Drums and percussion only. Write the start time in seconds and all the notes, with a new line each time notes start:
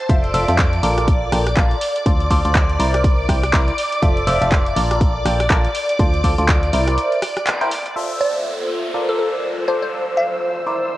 0.09 kick, closed hi-hat
0.24 closed hi-hat
0.34 open hi-hat
0.48 closed hi-hat
0.58 kick, clap, closed hi-hat
0.73 closed hi-hat
0.83 open hi-hat
0.97 cross-stick, closed hi-hat
1.08 kick, closed hi-hat
1.32 cross-stick, open hi-hat
1.47 cross-stick, closed hi-hat
1.57 kick, clap, closed hi-hat
1.71 closed hi-hat
1.81 open hi-hat
1.96 closed hi-hat
2.06 kick, closed hi-hat
2.20 closed hi-hat
2.30 kick, open hi-hat
2.45 closed hi-hat
2.55 kick, clap, closed hi-hat
2.70 closed hi-hat
2.80 open hi-hat
2.94 cross-stick, closed hi-hat
3.04 kick, closed hi-hat
3.29 kick, cross-stick, open hi-hat
3.43 cross-stick, closed hi-hat
3.53 kick, clap, closed hi-hat
3.68 closed hi-hat
3.78 open hi-hat
3.92 closed hi-hat
4.03 kick, closed hi-hat
4.17 closed hi-hat
4.27 open hi-hat
4.42 closed hi-hat
4.52 kick, clap, closed hi-hat
4.66 closed hi-hat
4.76 open hi-hat
4.91 cross-stick, closed hi-hat
5.01 kick, closed hi-hat
5.26 cross-stick, open hi-hat
5.40 cross-stick, closed hi-hat
5.50 kick, clap, closed hi-hat
5.65 closed hi-hat
5.75 open hi-hat
5.89 closed hi-hat
5.99 kick, closed hi-hat
6.14 closed hi-hat
6.24 kick, open hi-hat
6.38 closed hi-hat
6.48 kick, clap, closed hi-hat
6.63 closed hi-hat
6.73 open hi-hat
6.87 cross-stick, closed hi-hat
6.98 closed hi-hat
7.12 closed hi-hat
7.22 cross-stick, open hi-hat
7.37 cross-stick, closed hi-hat
7.47 clap, closed hi-hat
7.61 closed hi-hat
7.71 open hi-hat
7.86 closed hi-hat